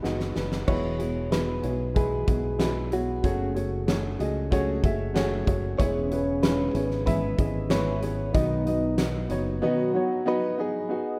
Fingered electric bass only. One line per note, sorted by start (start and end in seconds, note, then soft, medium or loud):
0.04 0.34 F#1 medium
0.36 0.66 F#1 medium
0.68 1.60 E1 medium
1.64 2.24 B1 medium
2.28 3.20 B1 medium
3.24 4.16 F#1 medium
4.20 4.80 C#2 medium
4.84 5.44 F#1 loud
5.47 5.77 F#1 medium
5.80 6.71 E1 loud
6.75 7.35 G#1 medium
7.39 8.31 G#1 medium
8.35 9.27 B1 loud
9.30 9.60 F#1 medium